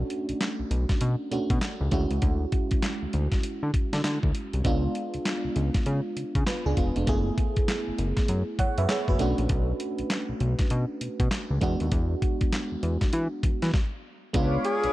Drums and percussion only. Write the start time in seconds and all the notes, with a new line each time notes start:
0.10 closed hi-hat
0.29 closed hi-hat
0.41 snare, clap, closed hi-hat
0.71 closed hi-hat
0.89 kick, snare, closed hi-hat
1.01 closed hi-hat
1.32 closed hi-hat
1.50 kick, closed hi-hat
1.61 snare, clap, closed hi-hat
1.91 kick, closed hi-hat
2.11 closed hi-hat
2.22 kick, closed hi-hat
2.52 kick, closed hi-hat
2.71 kick, closed hi-hat
2.82 snare, clap, closed hi-hat
3.13 closed hi-hat
3.32 kick, snare, closed hi-hat
3.43 closed hi-hat
3.74 kick, closed hi-hat
3.93 snare, closed hi-hat
4.04 snare, clap, closed hi-hat
4.23 kick
4.35 closed hi-hat
4.53 closed hi-hat
4.65 kick, closed hi-hat
4.95 closed hi-hat
5.14 closed hi-hat
5.25 snare, clap, closed hi-hat
5.56 closed hi-hat
5.74 kick, snare, closed hi-hat
5.86 closed hi-hat
6.17 closed hi-hat
6.35 kick, closed hi-hat
6.47 snare, clap, closed hi-hat
6.77 kick, closed hi-hat
6.96 closed hi-hat
7.07 kick, closed hi-hat
7.38 kick, closed hi-hat
7.56 kick, closed hi-hat
7.68 snare, clap, closed hi-hat
7.98 closed hi-hat
8.17 kick, snare, closed hi-hat
8.28 closed hi-hat
8.59 kick, closed hi-hat
8.78 closed hi-hat
8.89 snare, clap, closed hi-hat
9.08 kick
9.19 closed hi-hat
9.38 closed hi-hat
9.49 kick, closed hi-hat
9.80 closed hi-hat
9.98 closed hi-hat
10.10 snare, clap, closed hi-hat
10.40 closed hi-hat
10.59 kick, snare, closed hi-hat
10.70 closed hi-hat
11.01 closed hi-hat
11.20 kick, closed hi-hat
11.31 snare, clap, closed hi-hat
11.61 kick, closed hi-hat
11.80 closed hi-hat
11.92 kick, closed hi-hat
12.22 kick, closed hi-hat
12.41 kick, closed hi-hat
12.52 snare, clap, closed hi-hat
12.83 closed hi-hat
13.01 kick, snare, closed hi-hat
13.13 closed hi-hat
13.43 kick, closed hi-hat
13.62 snare, closed hi-hat
13.74 kick, snare
14.34 kick, closed hi-hat
14.65 closed hi-hat
14.84 closed hi-hat